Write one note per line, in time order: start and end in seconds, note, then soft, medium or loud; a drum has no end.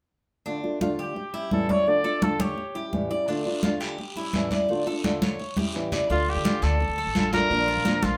0.46 0.63 D3 medium
0.46 0.63 A3 medium
0.46 0.80 D4 medium
0.46 0.63 D4 medium
0.46 0.62 F4 medium
0.46 high conga soft
0.63 0.80 A3 soft
0.63 0.80 D4 soft
0.63 0.81 F4 soft
0.63 high conga soft
0.80 1.15 D3 medium
0.80 1.16 A3 medium
0.80 1.16 D4 medium
0.80 0.98 F4 medium
0.80 1.16 F4 medium
0.80 high conga medium
0.99 1.33 G4 medium
0.99 1.49 G4 medium
0.99 high conga soft
1.16 muted nylon-string guitar stroke soft
1.16 high conga soft
1.34 1.51 G3 soft
1.34 1.51 C#4 soft
1.34 1.51 E4 soft
1.34 1.68 E4 medium
1.34 high conga soft
1.51 1.68 A2 medium
1.51 1.69 E3 medium
1.51 1.69 G3 medium
1.51 1.68 C#4 medium
1.51 1.68 E4 medium
1.51 1.73 A4 medium
1.51 high conga medium
1.69 1.87 G3 soft
1.69 1.87 C#4 soft
1.69 1.86 E4 soft
1.69 1.89 C#5 medium
1.69 2.04 D5 medium
1.69 high conga medium
1.86 2.04 D3 medium
1.86 2.04 A3 medium
1.86 2.04 D4 medium
1.86 2.03 F4 medium
1.86 2.25 D5 loud
1.86 high conga soft
2.04 2.21 A3 soft
2.04 2.21 D4 soft
2.04 2.21 F4 soft
2.04 2.39 A4 medium
2.04 high conga soft
2.21 2.57 D3 medium
2.21 2.57 A3 medium
2.21 2.57 D4 medium
2.21 2.57 F4 medium
2.21 2.43 A4 medium
2.21 high conga medium
2.40 2.94 G4 medium
2.40 2.74 C#5 medium
2.40 high conga medium
2.57 muted nylon-string guitar stroke medium
2.57 high conga soft
2.75 2.92 G3 soft
2.75 2.93 C#4 soft
2.75 2.92 E4 soft
2.75 3.10 G4 medium
2.75 high conga soft
2.92 3.10 A2 medium
2.92 3.10 E3 medium
2.92 3.10 G3 medium
2.92 3.10 C#4 medium
2.92 3.09 E4 medium
2.92 high conga medium
3.11 3.28 G3 soft
3.11 3.28 C#4 soft
3.11 3.28 E4 soft
3.11 3.28 D5 medium
3.28 3.45 D3 medium
3.28 3.45 A3 medium
3.28 3.63 D4 medium
3.28 3.46 D4 medium
3.28 3.45 F4 medium
3.28 high conga soft
3.28 long guiro medium
3.46 3.63 A3 soft
3.46 3.63 D4 soft
3.46 3.63 F4 medium
3.46 high conga soft
3.63 3.98 D3 medium
3.63 3.98 A3 medium
3.63 3.99 D4 medium
3.63 3.81 F4 medium
3.63 3.99 F4 medium
3.63 high conga medium
3.63 short guiro medium
3.81 4.15 G4 medium
3.81 high conga soft
3.81 short guiro medium
3.98 muted nylon-string guitar stroke medium
3.98 high conga soft
3.98 long guiro medium
4.16 4.34 G3 soft
4.16 4.34 C#4 soft
4.16 4.51 E4 medium
4.16 4.34 E4 soft
4.16 high conga soft
4.33 4.51 A2 medium
4.33 4.51 E3 medium
4.33 4.51 G3 medium
4.33 4.51 C#4 medium
4.33 4.50 E4 medium
4.33 high conga medium
4.33 short guiro medium
4.51 4.69 G3 soft
4.51 4.69 C#4 soft
4.51 4.68 E4 soft
4.51 4.86 D5 medium
4.51 high conga medium
4.51 short guiro medium
4.69 4.86 D3 medium
4.69 4.86 A3 medium
4.69 4.86 D4 medium
4.69 4.85 F4 medium
4.69 high conga soft
4.69 long guiro medium
4.86 5.04 A3 soft
4.86 5.04 D4 soft
4.86 5.03 F4 soft
4.86 5.21 A4 medium
4.86 high conga soft
5.04 5.39 D3 medium
5.04 5.39 A3 medium
5.04 5.39 D4 medium
5.04 5.40 F4 medium
5.04 high conga medium
5.04 short guiro medium
5.22 5.56 C#5 medium
5.22 high conga medium
5.22 short guiro medium
5.39 muted nylon-string guitar stroke medium
5.39 high conga soft
5.39 long guiro medium
5.57 5.74 G3 soft
5.57 5.74 C#4 soft
5.57 5.74 E4 soft
5.57 5.91 G4 medium
5.57 high conga medium
5.74 5.91 A2 medium
5.74 5.92 E3 medium
5.74 5.92 G3 medium
5.74 5.91 C#4 medium
5.74 5.91 E4 medium
5.74 short guiro medium
5.92 6.10 G3 soft
5.92 6.09 C#4 soft
5.92 6.09 E4 soft
5.92 6.09 D5 medium
5.92 low conga medium
5.92 short guiro medium
6.10 6.35 D2 medium
6.10 6.44 D3 medium
6.10 6.44 A3 medium
6.10 6.44 D4 medium
6.10 6.45 D4 medium
6.10 6.31 F4 medium
6.10 6.45 F4 medium
6.10 high conga soft
6.10 long guiro medium
6.28 6.65 G4 medium
6.28 high conga soft
6.36 6.61 D3 medium
6.45 6.79 D3 medium
6.45 6.80 A3 medium
6.45 6.80 D4 medium
6.45 6.62 F4 medium
6.45 6.80 F4 medium
6.45 high conga medium
6.45 short guiro medium
6.62 6.88 D2 medium
6.62 7.33 A4 medium
6.62 6.97 D5 medium
6.62 high conga soft
6.62 short guiro medium
6.80 muted nylon-string guitar stroke soft
6.80 high conga soft
6.80 long guiro medium
6.89 7.06 D2 medium
6.98 7.15 A4 medium
6.98 high conga soft
7.06 7.48 A1 medium
7.15 7.32 D3 soft
7.15 7.32 A3 soft
7.15 7.33 D4 soft
7.15 7.33 F4 medium
7.15 7.31 F4 medium
7.15 high conga medium
7.15 short guiro medium
7.33 7.50 A3 soft
7.33 7.50 D4 medium
7.33 7.50 F4 medium
7.33 8.06 A#4 loud
7.33 7.67 D5 medium
7.33 high conga medium
7.33 short guiro medium
7.50 7.75 A#1 medium
7.50 7.84 F3 medium
7.50 7.84 A#3 medium
7.50 7.85 D4 medium
7.50 7.86 F4 medium
7.50 high conga soft
7.50 long guiro medium
7.68 7.85 F4 medium
7.68 high conga soft
7.77 8.02 A#2 medium
7.85 8.17 F3 medium
7.85 8.17 A#3 medium
7.85 8.17 D4 medium
7.85 8.17 F4 medium
7.85 8.03 A#4 medium
7.85 high conga medium
7.85 short guiro medium
8.03 8.17 A#1 medium
8.03 8.17 F4 medium
8.03 high conga medium
8.03 short guiro medium